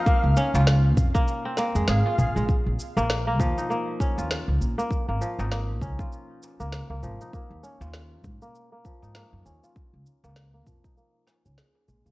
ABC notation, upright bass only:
X:1
M:4/4
L:1/16
Q:"Swing 16ths" 1/4=99
K:Db
V:1 name="Upright bass" clef=bass
z D,, z D,,3 F,, z4 F,, A,,, z B,,, B,,, | z B,,, z B,,,3 E,, z4 E,, z D,, B,,, z | z A,,, z A,,,3 D,, z4 D,, z D,, A,,, z | z E,, z E,,3 A,, z4 A,, z G,, E,, z |
z D,, z D,,3 F,, z4 D,, z2 B,,, D,, |]